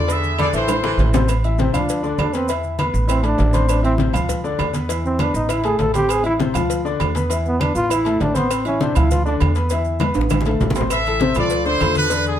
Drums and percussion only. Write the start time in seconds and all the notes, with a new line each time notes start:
0.08 cowbell, high conga, low agogo, maracas
0.24 high conga, maracas
0.38 cowbell, high conga, low timbale, low agogo, claves, maracas
0.53 high conga, maracas
0.68 cowbell, high bongo, high conga, high timbale, low agogo, claves, maracas
0.84 cowbell, low bongo, high conga, low agogo, maracas
0.99 cowbell, high conga, low timbale, maracas
1.13 cowbell, low bongo, high conga, low timbale, low agogo, maracas
1.28 cowbell, high conga, low agogo, claves, maracas
1.44 high conga, low agogo, maracas
1.58 cowbell, high conga, low timbale, maracas
1.74 cowbell, high conga, low conga, low agogo, claves, maracas
1.89 cowbell, high conga, maracas
2.04 high conga, maracas
2.18 cowbell, high conga, low timbale, low agogo, claves, maracas
2.34 cowbell, maracas
2.48 cowbell, high conga, low agogo, maracas
2.63 high conga, maracas
2.79 cowbell, high conga, low timbale, low agogo, claves, maracas
2.94 high conga, maracas
3.09 cowbell, high conga, low agogo, claves, maracas
3.23 cowbell, high conga, low agogo, maracas
3.38 cowbell, high conga, low timbale, maracas
3.53 cowbell, high conga, low agogo, maracas
3.69 cowbell, high conga, low agogo, claves, maracas
3.84 high conga, low agogo, maracas
3.98 cowbell, high conga, low timbale, maracas
4.13 cowbell, high conga, low conga, low agogo, claves, maracas
4.29 cowbell, high conga, low conga, maracas
4.44 high conga, maracas
4.59 cowbell, high conga, low timbale, low agogo, claves, maracas
4.73 cowbell, high conga, maracas
4.89 cowbell, high conga, low agogo, maracas
5.04 high conga, maracas
5.19 cowbell, high conga, low timbale, low agogo, claves, maracas
5.35 maracas
5.49 cowbell, high conga, low agogo, claves, maracas
5.64 cowbell, high conga, low agogo, maracas
5.79 cowbell, high conga, low timbale, maracas
5.94 cowbell, high conga, low agogo, maracas
6.09 cowbell, low agogo, claves, maracas
6.24 high conga, low agogo, maracas
6.39 cowbell, high conga, low timbale, maracas
6.54 cowbell, high conga, low conga, low agogo, claves, maracas
6.70 cowbell, high conga, maracas
6.86 high conga, maracas
7.00 cowbell, high conga, low timbale, low agogo, claves, maracas
7.15 cowbell, high conga, maracas
7.30 cowbell, high conga, low agogo, maracas
7.46 high conga, maracas
7.61 cowbell, high conga, low timbale, low agogo, claves, maracas
7.75 maracas
7.90 cowbell, high conga, low agogo, claves, maracas
8.05 cowbell, high conga, low agogo, maracas
8.20 cowbell, high conga, low timbale, maracas
8.35 cowbell, high conga, low agogo, maracas
8.50 cowbell, low agogo, claves, maracas
8.65 high conga, low agogo, maracas
8.80 cowbell, high conga, low timbale, maracas
8.95 cowbell, high conga, low conga, low agogo, claves, maracas
9.11 cowbell, high conga, low conga, maracas
9.26 high conga, maracas
9.40 cowbell, high conga, low timbale, low agogo, claves, maracas
9.55 cowbell, maracas
9.69 cowbell, high conga, low agogo, maracas
9.85 high conga, maracas
9.99 cowbell, high bongo, high conga, low timbale, low agogo, claves, maracas
10.14 high conga, high timbale, maracas
10.21 low bongo
10.30 cowbell, high bongo, high conga, high timbale, low agogo, claves, maracas
10.41 low bongo, high conga
10.45 cowbell, high timbale, low agogo, maracas
10.51 high conga
10.60 cowbell, low bongo, low conga, low timbale, maracas
10.70 low bongo, low conga
10.75 cowbell, low timbale, low agogo, maracas
10.81 low bongo, low conga
10.90 cowbell, high conga, low agogo, claves, maracas
11.05 high conga, low agogo, maracas
11.20 cowbell, high conga, low timbale, maracas
11.35 cowbell, high conga, low conga, low agogo, claves, maracas
11.50 cowbell, high conga, maracas
11.65 high conga, maracas
11.80 cowbell, high conga, low timbale, low agogo, claves, maracas
11.95 cowbell, high conga, maracas
12.10 cowbell, high conga, low agogo, maracas
12.26 high conga, maracas